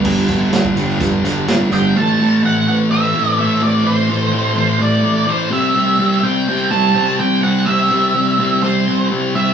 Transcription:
<<
  \new Staff \with { instrumentName = "Lead electric guitar" } { \time 4/4 \key a \minor \tempo 4 = 126 r2. r8 g''8 | a''4 fis''8 fis''8 e''4 e''8 d''8 | c''2 d''4 c''8 e''8~ | e''4 g''4 a''4 g''8 fis''8 |
e''2 c''4 r8 e''8 | }
  \new Staff \with { instrumentName = "String machine" } { \time 4/4 \key a \minor << { r1 | b'1 | a'2.~ a'8 c''8~ | c''1~ |
c''1 | } \\ { r1 | <a c'>1~ | <a c'>2.~ <a c'>8 <g e'>8~ | <g e'>1~ |
<g e'>1 | } >> }
  \new Staff \with { instrumentName = "Distorted electric guitar" } { \clef bass \time 4/4 \key a \minor <g, d g>8 <g, d g>8 <g, d g>8 <g, d g>8 <g, d g>8 <g, d g>8 <g, d g>8 <g, d g>8 | <a, e a>8 <a, e a>8 <a, e a>8 <a, e a>8 <a, e a>8 <a, e a>8 <a, e a>8 <a, e a>8 | <a, e a>8 <a, e a>8 <a, e a>8 <a, e a>8 <a, e a>8 <a, e a>8 <a, e a>8 <c g c'>8 | <c g c'>8 <c g c'>8 <c g c'>8 <c g c'>8 <c g c'>8 <c g c'>8 <c g c'>8 <c g c'>8 |
<c g c'>8 <c g c'>8 <c g c'>8 <c g c'>8 <c g c'>8 <c g c'>8 <c g c'>8 <c g c'>8 | }
  \new Staff \with { instrumentName = "Distorted electric guitar" } { \clef bass \time 4/4 \key a \minor <g, d g>8 <g, d g>8 <g, d g>8 <g, d g>8 <g, d g>8 <g, d g>8 <g, d g>8 <g, d g>8 | r1 | r1 | r1 |
r1 | }
  \new Staff \with { instrumentName = "Fingered electric bass" } { \clef bass \time 4/4 \key a \minor g,,8 g,,8 g,,8 g,,8 g,,8 g,,8 g,,8 g,,8 | r1 | r1 | r1 |
r1 | }
  \new DrumStaff \with { instrumentName = "Drums" } \drummode { \time 4/4 <cymc bd>8 <hh bd>8 <hh sn>16 bd16 hh16 sn16 <hh bd>8 hh8 <hh sn>8 hh8 | r4 r4 r4 r4 | r4 r4 r4 r4 | r4 r4 r4 r4 |
r4 r4 r4 r4 | }
>>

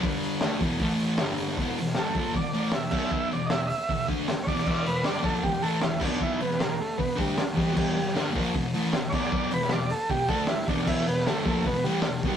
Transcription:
<<
  \new Staff \with { instrumentName = "Transistor combo organ" } { \time 4/4 \key e \minor \tempo 4 = 155 r1 | r4 a'4 d''4 e''4 | e''8 d''8 <dis'' e''>8 <dis'' e''>4 r4 <cis'' d''>8~ | <cis'' d''>8 b'8 d''8 a'8 g'8 a'8 e'8 d'8 |
e'8 b8 ais8 a8 b8 g8 r8 g8 | <fis g>4 r2 r8 <cis'' d''>8~ | <cis'' d''>8 b'8 d''8 a'8 g'8 a'8 e'8 d'8 | e'8 b8 a8 a8 b8 g8 r8 g8 | }
  \new Staff \with { instrumentName = "Distorted electric guitar" } { \clef bass \time 4/4 \key e \minor <g, d g>4 <d a d'>8 <e, b, e>8 <a, e a>4 <g, d g>4 | <e, b, e>8 <e, b,>8 <g, d g>8 <ais, f ais>8 <e, b,>8 <a, e a>8 <e, b,>8 <b, fis b>8~ | <b, fis b>8 <e, b,>8 <e, b,>8 r8 <e, b,>8 <d a d'>8 r8 <e, b, e>8 | <e, b, e>8 <e, b,>8 <g, d g>8 <ais, f ais>8 <e, b,>8 <a, e a>8 <e, b,>8 <b, fis b>8~ |
<b, fis b>8 <e, b,>8 <e, b,>8 r8 <e, b,>8 <d a d'>8 r8 <e, b, e>8 | <e, b, e>8 <e, b,>8 <g, d g>8 <ais, f ais>8 <e, b,>8 <a, e a>8 <e, b,>8 <b, fis b>8~ | <b, fis b>8 <e, b,>8 <e, b,>8 r8 <e, b,>8 <d a d'>8 r8 <e, b, e>8 | <e, b, e>8 <e, b,>8 <g, d g>8 <ais, f ais>8 <e, b,>8 <a, e a>8 <e, b,>8 <b, fis b>8 | }
  \new DrumStaff \with { instrumentName = "Drums" } \drummode { \time 4/4 <hho bd>8 hho8 <hho sn>8 <hho bd>8 <hho bd>8 hho8 <hho sn>8 hho16 sn16 | <hho bd>8 hho16 sn16 <hho sn>8 <hho bd>8 <hho bd>8 hho8 <hho sn>8 <cymc bd>8 | bd8 hho8 <hho sn>8 hho8 <hho bd>8 <hho bd>8 <hho sn>8 <hho bd>16 sn16 | <cymc bd>8 hho8 <hho sn>8 <hho bd>8 <hho bd>8 hho8 <hho sn>8 <cymc bd>8 |
bd8 hho16 sn16 <hho sn>8 hho8 <hho bd>8 <hho bd>8 <hho sn>8 <hho bd>16 sn16 | <cymc bd>8 hho16 sn16 <hho sn>8 <hho bd>8 <hho bd>8 hho8 <hho sn>8 <cymc bd>16 sn16 | bd8 hho16 sn16 <hho sn>8 hho8 <hho bd>8 <hho bd>8 <hho sn>8 <hho bd>16 sn16 | <cymc bd>8 hho16 sn16 <hho sn>8 <hho bd>8 <hho bd>8 hho8 <hho sn>8 <hho bd>16 sn16 | }
>>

